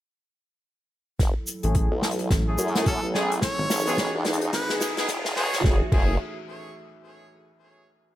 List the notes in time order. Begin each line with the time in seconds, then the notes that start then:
1.19 F#1 F#3 E4 A4, kick, snare, closed hi-hat, riser
1.47 closed hi-hat, shaker
1.63 A1 A3 C#4 E4 G#4, closed hi-hat
1.75 kick, closed hi-hat
1.92 B1
2.02 snare, closed hi-hat
2.11 closed hi-hat
2.19 closed hi-hat
2.30 A1, kick, snare, closed hi-hat
2.47 A3 C#4 E4 G#4
2.58 F#2, closed hi-hat, shaker
2.68 closed hi-hat
2.75 A3 C#4 E4 G#4, snare, closed hi-hat
2.77 closed hi-hat
2.86 C#4 A4, kick, closed hi-hat
3.03 A1
3.14 A3 C#4 E4 G#4, snare
3.32 closed hi-hat
3.41 E3 D#4 G#4 C#5, kick, snare, closed hi-hat
3.58 G#1
3.70 G#1, snare, closed hi-hat, shaker
3.76 shaker
3.79 shaker
3.86 B3 D#4 F#4 G#4, closed hi-hat, shaker
3.89 shaker
3.94 kick, snare, closed hi-hat, shaker
4.14 E1
4.25 snare, closed hi-hat
4.33 closed hi-hat
4.41 closed hi-hat
4.53 G#1 B4, kick, snare, closed hi-hat
4.69 B3 D#4 F#4 G#4, snare
4.80 snare, closed hi-hat, shaker
4.97 B3 D#4 F#4 G#4, snare, closed hi-hat
5.08 E1, kick, snare, closed hi-hat
5.25 snare
5.36 B3 D#4 F#4 G#4 C#5, snare
5.53 G#1, snare, closed hi-hat
5.64 F#1 A3 C#4 E4 F#4 G#4 E5, kick, snare
5.92 F#1 A3 C#4 E4 G#4, kick, crash